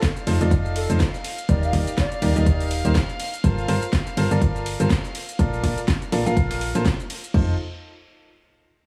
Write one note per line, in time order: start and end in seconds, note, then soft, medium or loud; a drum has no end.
0.00 7.35 F5 medium
0.00 7.35 F6 medium
0.00 kick loud
0.00 snare loud
0.00 closed hi-hat medium
0.00 shaker medium
0.17 closed hi-hat soft
0.17 shaker soft
0.27 0.38 F1 loud
0.27 0.39 D#4 medium
0.27 0.39 F4 medium
0.27 0.39 A4 medium
0.27 0.39 C5 medium
0.27 closed hi-hat medium
0.27 open hi-hat loud
0.27 ride medium
0.41 0.87 F1 loud
0.41 0.86 D#4 loud
0.41 0.86 F4 medium
0.41 0.86 A4 medium
0.41 0.86 D5 loud
0.41 closed hi-hat medium
0.41 shaker medium
0.51 kick loud
0.51 closed hi-hat medium
0.51 shaker medium
0.66 shaker soft
0.76 0.89 A4 medium
0.76 closed hi-hat medium
0.76 open hi-hat loud
0.76 ride medium
0.90 0.98 F1 loud
0.90 1.00 D#4 medium
0.90 1.00 F4 medium
0.90 1.00 A4 medium
0.90 1.00 C5 medium
0.90 closed hi-hat medium
0.90 shaker medium
1.00 kick loud
1.00 snare loud
1.00 closed hi-hat medium
1.00 shaker medium
1.14 snare soft
1.14 shaker soft
1.24 closed hi-hat medium
1.24 open hi-hat loud
1.24 ride medium
1.38 closed hi-hat medium
1.38 shaker medium
1.49 1.71 D#1 loud
1.49 1.69 D#4 medium
1.49 1.69 G4 medium
1.49 1.69 A#4 medium
1.49 1.69 D5 loud
1.49 1.60 D5 medium
1.49 kick loud
1.49 closed hi-hat medium
1.49 shaker medium
1.63 1.73 F5 medium
1.63 shaker soft
1.73 1.84 D#1 loud
1.73 1.87 D#4 medium
1.73 1.87 G4 medium
1.73 1.87 A#4 medium
1.73 1.87 D5 loud
1.73 kick medium
1.73 snare soft
1.73 closed hi-hat medium
1.73 open hi-hat loud
1.73 ride medium
1.87 closed hi-hat medium
1.87 closed hi-hat soft
1.87 shaker medium
1.98 2.67 D5 medium
1.98 kick loud
1.98 snare loud
1.98 closed hi-hat medium
1.98 shaker medium
2.12 closed hi-hat soft
2.12 shaker soft
2.22 2.33 D#1 loud
2.22 2.34 D#4 medium
2.22 2.34 G4 medium
2.22 2.34 A#4 medium
2.22 2.34 D5 medium
2.22 open hi-hat medium
2.22 ride medium
2.36 2.82 D#1 medium
2.36 2.82 D#4 loud
2.36 2.82 G4 medium
2.36 2.82 A#4 medium
2.36 2.82 D#5 loud
2.36 closed hi-hat medium
2.36 shaker medium
2.46 kick loud
2.46 closed hi-hat medium
2.46 closed hi-hat loud
2.46 shaker medium
2.60 open hi-hat medium
2.60 shaker soft
2.71 open hi-hat loud
2.71 open hi-hat medium
2.71 ride medium
2.85 2.93 D#1 loud
2.85 2.95 D#4 medium
2.85 2.95 G4 medium
2.85 2.95 A#4 medium
2.85 2.95 C5 medium
2.85 closed hi-hat medium
2.85 shaker medium
2.95 kick loud
2.95 snare loud
2.95 closed hi-hat medium
2.95 shaker medium
3.09 closed hi-hat soft
3.09 shaker soft
3.20 closed hi-hat medium
3.20 open hi-hat loud
3.20 ride medium
3.34 closed hi-hat medium
3.34 shaker medium
3.44 3.66 G1 loud
3.44 3.64 F4 loud
3.44 3.64 A4 medium
3.44 3.64 A#4 medium
3.44 3.64 C5 loud
3.44 kick loud
3.44 closed hi-hat medium
3.44 shaker medium
3.58 shaker soft
3.68 3.80 G1 loud
3.68 3.82 F4 medium
3.68 3.82 A4 medium
3.68 3.82 A#4 medium
3.68 3.82 C5 loud
3.68 closed hi-hat medium
3.68 open hi-hat loud
3.68 ride medium
3.82 closed hi-hat medium
3.82 shaker medium
3.93 kick loud
3.93 snare loud
3.93 closed hi-hat medium
3.93 shaker medium
4.07 closed hi-hat soft
4.07 shaker soft
4.17 4.28 G1 loud
4.17 4.29 F4 medium
4.17 4.29 A4 medium
4.17 4.29 A#4 medium
4.17 4.29 C5 medium
4.17 closed hi-hat medium
4.17 open hi-hat loud
4.17 ride medium
4.31 4.77 G1 loud
4.31 4.77 F4 medium
4.31 4.77 A4 loud
4.31 4.77 A#4 loud
4.31 4.77 D5 loud
4.31 closed hi-hat medium
4.31 shaker medium
4.42 kick loud
4.42 closed hi-hat medium
4.42 shaker medium
4.56 shaker soft
4.66 closed hi-hat medium
4.66 open hi-hat loud
4.66 ride medium
4.80 4.88 G1 loud
4.80 4.90 F4 medium
4.80 4.90 A4 medium
4.80 4.90 A#4 medium
4.80 4.90 C5 medium
4.80 closed hi-hat medium
4.80 shaker medium
4.90 kick loud
4.90 snare loud
4.90 closed hi-hat medium
4.90 shaker medium
5.04 snare soft
5.04 shaker soft
5.15 open hi-hat loud
5.15 ride medium
5.29 closed hi-hat medium
5.29 shaker medium
5.39 5.61 A#1 loud
5.39 5.59 F4 loud
5.39 5.59 A4 medium
5.39 5.59 A#4 medium
5.39 5.59 D5 loud
5.39 kick loud
5.39 closed hi-hat medium
5.39 shaker medium
5.53 shaker soft
5.64 5.75 A#1 loud
5.64 5.78 F4 loud
5.64 5.78 A4 medium
5.64 5.77 A#4 medium
5.64 5.78 D5 loud
5.64 kick medium
5.64 snare soft
5.64 closed hi-hat medium
5.64 open hi-hat loud
5.64 ride medium
5.78 closed hi-hat soft
5.78 closed hi-hat medium
5.78 shaker medium
5.88 kick loud
5.88 snare loud
5.88 closed hi-hat medium
5.88 shaker medium
6.02 closed hi-hat soft
6.02 shaker soft
6.12 6.24 A#1 loud
6.12 6.24 F4 medium
6.12 6.24 A4 medium
6.12 6.24 A#4 medium
6.12 6.24 D5 loud
6.12 snare loud
6.12 closed hi-hat medium
6.12 open hi-hat loud
6.12 ride medium
6.26 6.72 A#1 loud
6.26 6.72 F4 loud
6.26 6.72 A4 medium
6.26 6.72 A#4 medium
6.26 6.72 F5 loud
6.26 closed hi-hat medium
6.26 shaker medium
6.37 kick loud
6.37 closed hi-hat medium
6.37 shaker medium
6.51 snare loud
6.51 closed hi-hat medium
6.51 open hi-hat medium
6.51 shaker soft
6.61 open hi-hat loud
6.61 ride medium
6.75 6.83 A#1 loud
6.75 6.85 F4 medium
6.75 6.85 A4 medium
6.75 6.86 A#4 medium
6.75 6.85 C5 loud
6.75 closed hi-hat medium
6.75 shaker medium
6.86 kick loud
6.86 snare loud
6.86 closed hi-hat medium
6.86 shaker medium
7.00 shaker soft
7.10 closed hi-hat medium
7.10 open hi-hat loud
7.10 ride medium
7.24 closed hi-hat medium
7.24 shaker medium
7.34 7.57 F1 loud
7.34 7.53 D#4 medium
7.34 7.53 F4 medium
7.34 7.53 A4 medium
7.34 7.53 C5 medium
7.34 kick loud
7.34 floor tom loud
7.34 crash medium